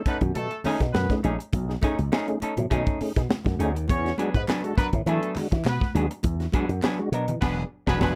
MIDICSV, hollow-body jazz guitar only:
0, 0, Header, 1, 3, 480
1, 0, Start_track
1, 0, Tempo, 589391
1, 1253, Time_signature, 4, 2, 24, 8
1, 6640, End_track
2, 0, Start_track
2, 0, Title_t, "Hollow-body jazz guitar"
2, 0, Program_c, 0, 26
2, 48, Note_on_c, 0, 57, 54
2, 56, Note_on_c, 0, 61, 62
2, 59, Note_on_c, 0, 63, 63
2, 64, Note_on_c, 0, 69, 59
2, 141, Note_off_c, 0, 57, 0
2, 145, Note_off_c, 0, 61, 0
2, 147, Note_off_c, 0, 63, 0
2, 149, Note_off_c, 0, 69, 0
2, 530, Note_on_c, 0, 57, 88
2, 535, Note_on_c, 0, 61, 94
2, 540, Note_on_c, 0, 63, 106
2, 544, Note_on_c, 0, 68, 109
2, 648, Note_off_c, 0, 57, 0
2, 650, Note_off_c, 0, 61, 0
2, 652, Note_off_c, 0, 63, 0
2, 652, Note_off_c, 0, 68, 0
2, 1004, Note_on_c, 0, 57, 57
2, 1010, Note_on_c, 0, 61, 61
2, 1014, Note_on_c, 0, 63, 62
2, 1017, Note_on_c, 0, 68, 65
2, 1099, Note_off_c, 0, 57, 0
2, 1102, Note_off_c, 0, 61, 0
2, 1104, Note_off_c, 0, 63, 0
2, 1106, Note_off_c, 0, 68, 0
2, 1481, Note_on_c, 0, 57, 89
2, 1490, Note_on_c, 0, 61, 81
2, 1495, Note_on_c, 0, 63, 91
2, 1499, Note_on_c, 0, 68, 88
2, 1603, Note_off_c, 0, 57, 0
2, 1607, Note_off_c, 0, 61, 0
2, 1610, Note_off_c, 0, 63, 0
2, 1612, Note_off_c, 0, 68, 0
2, 1725, Note_on_c, 0, 57, 87
2, 1729, Note_on_c, 0, 61, 79
2, 1734, Note_on_c, 0, 63, 96
2, 1738, Note_on_c, 0, 68, 102
2, 1844, Note_off_c, 0, 68, 0
2, 1845, Note_off_c, 0, 57, 0
2, 1847, Note_off_c, 0, 61, 0
2, 1850, Note_off_c, 0, 63, 0
2, 1968, Note_on_c, 0, 57, 63
2, 1973, Note_on_c, 0, 61, 62
2, 1977, Note_on_c, 0, 63, 65
2, 1982, Note_on_c, 0, 69, 72
2, 2061, Note_off_c, 0, 57, 0
2, 2064, Note_off_c, 0, 61, 0
2, 2066, Note_off_c, 0, 63, 0
2, 2068, Note_off_c, 0, 69, 0
2, 2201, Note_on_c, 0, 57, 81
2, 2205, Note_on_c, 0, 61, 81
2, 2212, Note_on_c, 0, 63, 82
2, 2216, Note_on_c, 0, 68, 83
2, 2429, Note_off_c, 0, 57, 0
2, 2431, Note_off_c, 0, 61, 0
2, 2435, Note_off_c, 0, 63, 0
2, 2436, Note_off_c, 0, 68, 0
2, 2925, Note_on_c, 0, 57, 50
2, 2931, Note_on_c, 0, 61, 57
2, 2936, Note_on_c, 0, 63, 63
2, 2938, Note_on_c, 0, 68, 56
2, 3020, Note_off_c, 0, 57, 0
2, 3023, Note_off_c, 0, 61, 0
2, 3025, Note_off_c, 0, 63, 0
2, 3026, Note_off_c, 0, 68, 0
2, 3403, Note_on_c, 0, 54, 73
2, 3408, Note_on_c, 0, 59, 86
2, 3412, Note_on_c, 0, 62, 82
2, 3416, Note_on_c, 0, 68, 76
2, 3523, Note_off_c, 0, 54, 0
2, 3526, Note_off_c, 0, 59, 0
2, 3528, Note_off_c, 0, 62, 0
2, 3530, Note_off_c, 0, 68, 0
2, 3647, Note_on_c, 0, 54, 82
2, 3654, Note_on_c, 0, 59, 96
2, 3658, Note_on_c, 0, 62, 93
2, 3660, Note_on_c, 0, 68, 85
2, 3761, Note_off_c, 0, 68, 0
2, 3766, Note_off_c, 0, 54, 0
2, 3769, Note_off_c, 0, 59, 0
2, 3771, Note_off_c, 0, 62, 0
2, 3884, Note_on_c, 0, 54, 66
2, 3889, Note_on_c, 0, 59, 64
2, 3891, Note_on_c, 0, 62, 67
2, 3897, Note_on_c, 0, 70, 65
2, 3979, Note_off_c, 0, 54, 0
2, 3981, Note_off_c, 0, 59, 0
2, 3982, Note_off_c, 0, 62, 0
2, 3985, Note_off_c, 0, 70, 0
2, 4128, Note_on_c, 0, 54, 70
2, 4131, Note_on_c, 0, 59, 78
2, 4135, Note_on_c, 0, 62, 76
2, 4144, Note_on_c, 0, 68, 78
2, 4352, Note_off_c, 0, 54, 0
2, 4353, Note_off_c, 0, 59, 0
2, 4355, Note_off_c, 0, 62, 0
2, 4360, Note_off_c, 0, 68, 0
2, 4844, Note_on_c, 0, 54, 60
2, 4850, Note_on_c, 0, 59, 60
2, 4853, Note_on_c, 0, 62, 67
2, 4858, Note_on_c, 0, 68, 66
2, 4938, Note_off_c, 0, 54, 0
2, 4941, Note_off_c, 0, 59, 0
2, 4943, Note_off_c, 0, 62, 0
2, 4945, Note_off_c, 0, 68, 0
2, 5322, Note_on_c, 0, 54, 87
2, 5327, Note_on_c, 0, 59, 83
2, 5331, Note_on_c, 0, 62, 83
2, 5333, Note_on_c, 0, 68, 89
2, 5442, Note_off_c, 0, 54, 0
2, 5445, Note_off_c, 0, 59, 0
2, 5446, Note_off_c, 0, 62, 0
2, 5448, Note_off_c, 0, 68, 0
2, 5566, Note_on_c, 0, 54, 89
2, 5569, Note_on_c, 0, 59, 85
2, 5573, Note_on_c, 0, 62, 94
2, 5579, Note_on_c, 0, 68, 91
2, 5680, Note_off_c, 0, 68, 0
2, 5684, Note_off_c, 0, 54, 0
2, 5686, Note_off_c, 0, 59, 0
2, 5688, Note_off_c, 0, 62, 0
2, 5803, Note_on_c, 0, 54, 58
2, 5811, Note_on_c, 0, 59, 51
2, 5814, Note_on_c, 0, 62, 54
2, 5819, Note_on_c, 0, 70, 55
2, 5897, Note_off_c, 0, 54, 0
2, 5901, Note_off_c, 0, 59, 0
2, 5903, Note_off_c, 0, 62, 0
2, 5905, Note_off_c, 0, 70, 0
2, 6035, Note_on_c, 0, 54, 90
2, 6040, Note_on_c, 0, 59, 88
2, 6045, Note_on_c, 0, 62, 97
2, 6049, Note_on_c, 0, 68, 104
2, 6207, Note_off_c, 0, 54, 0
2, 6210, Note_off_c, 0, 59, 0
2, 6213, Note_off_c, 0, 62, 0
2, 6215, Note_off_c, 0, 68, 0
2, 6411, Note_on_c, 0, 54, 92
2, 6415, Note_on_c, 0, 59, 93
2, 6419, Note_on_c, 0, 62, 83
2, 6422, Note_on_c, 0, 68, 101
2, 6509, Note_off_c, 0, 54, 0
2, 6512, Note_off_c, 0, 59, 0
2, 6514, Note_off_c, 0, 62, 0
2, 6516, Note_off_c, 0, 68, 0
2, 6522, Note_on_c, 0, 54, 90
2, 6529, Note_on_c, 0, 59, 94
2, 6532, Note_on_c, 0, 62, 87
2, 6537, Note_on_c, 0, 68, 99
2, 6640, Note_off_c, 0, 54, 0
2, 6640, Note_off_c, 0, 59, 0
2, 6640, Note_off_c, 0, 62, 0
2, 6640, Note_off_c, 0, 68, 0
2, 6640, End_track
3, 0, Start_track
3, 0, Title_t, "Muted hollow-body jazz guitar strokes"
3, 180, Note_on_c, 9, 29, 43
3, 262, Note_off_c, 9, 29, 0
3, 288, Note_on_c, 9, 29, 49
3, 370, Note_off_c, 9, 29, 0
3, 418, Note_on_c, 9, 29, 45
3, 499, Note_off_c, 9, 29, 0
3, 661, Note_on_c, 9, 29, 48
3, 743, Note_off_c, 9, 29, 0
3, 778, Note_on_c, 9, 29, 40
3, 860, Note_off_c, 9, 29, 0
3, 1131, Note_on_c, 9, 29, 46
3, 1212, Note_off_c, 9, 29, 0
3, 1854, Note_on_c, 9, 29, 39
3, 1936, Note_off_c, 9, 29, 0
3, 2104, Note_on_c, 9, 29, 45
3, 2185, Note_off_c, 9, 29, 0
3, 2449, Note_on_c, 9, 29, 40
3, 2531, Note_off_c, 9, 29, 0
3, 2581, Note_on_c, 9, 29, 50
3, 2662, Note_off_c, 9, 29, 0
3, 2695, Note_on_c, 9, 29, 32
3, 2777, Note_off_c, 9, 29, 0
3, 3055, Note_on_c, 9, 29, 47
3, 3136, Note_off_c, 9, 29, 0
3, 3771, Note_on_c, 9, 29, 36
3, 3852, Note_off_c, 9, 29, 0
3, 4020, Note_on_c, 9, 29, 49
3, 4101, Note_off_c, 9, 29, 0
3, 4366, Note_on_c, 9, 29, 47
3, 4447, Note_off_c, 9, 29, 0
3, 4491, Note_on_c, 9, 29, 39
3, 4573, Note_off_c, 9, 29, 0
3, 4603, Note_on_c, 9, 29, 31
3, 4685, Note_off_c, 9, 29, 0
3, 4976, Note_on_c, 9, 29, 55
3, 5057, Note_off_c, 9, 29, 0
3, 5690, Note_on_c, 9, 29, 50
3, 5772, Note_off_c, 9, 29, 0
3, 5940, Note_on_c, 9, 29, 41
3, 6022, Note_off_c, 9, 29, 0
3, 6640, End_track
0, 0, End_of_file